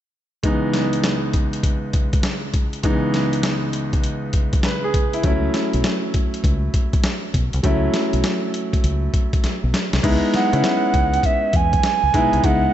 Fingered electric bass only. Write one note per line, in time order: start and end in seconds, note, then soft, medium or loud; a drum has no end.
5.24 5.47 C#2 loud
5.74 5.82 B1 medium
6.44 6.68 C#2 medium
7.34 7.49 B1 medium
7.54 7.62 C2 medium
7.64 7.87 C#2 medium
8.13 8.22 B1 medium
8.84 9.07 C#2 medium
9.44 muted fingered electric bass stroke soft
9.64 9.72 B1 medium
9.93 10.02 C2 medium
10.04 10.19 C#2 medium
10.34 muted fingered electric bass stroke soft
10.53 10.62 C#3 medium
10.94 11.17 C#2 medium
11.54 11.77 E2 medium
12.03 12.12 C#2 medium
12.14 12.29 B1 loud
12.33 12.42 C2 medium
12.44 12.67 C#2 loud